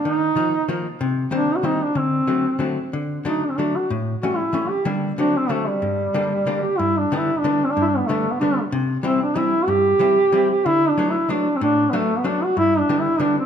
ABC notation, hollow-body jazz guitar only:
X:1
M:3/4
L:1/8
Q:"Swing" 1/4=187
K:Gm
V:1 name="Hollow-body jazz guitar" clef=bass
E,2 [E,F,B,E] z [E,F,B,E] z | C,2 [E,G,B,C] z [E,G,B,C] z | D,2 [D,^F,A,C] z [D,F,A,C] z | D,2 [D,^F,A,D] z [D,F,A,D] z |
A,,2 [=E,G,A,^C] z [E,G,A,C] z | [D,G,B,D]2 [D,^F,A,C] z [D,F,A,C] z | G,,2 [D,G,B,D] z [D,G,B,D] z | [K:G] G,,2 [D,G,B,D] z [D,G,B,D] z |
G,,2 [D,G,B,D] z [D,G,B,D] z | C,2 [E,G,CE] z [E,G,CE] z | G,,2 [E,G,CE] z [E,G,CE] z | D,2 [F,A,B,D] z [F,A,B,D] z |
A,,2 [F,A,B,D] z [F,A,B,D] z | G,,2 [D,G,B,D] z [D,G,B,D] z |]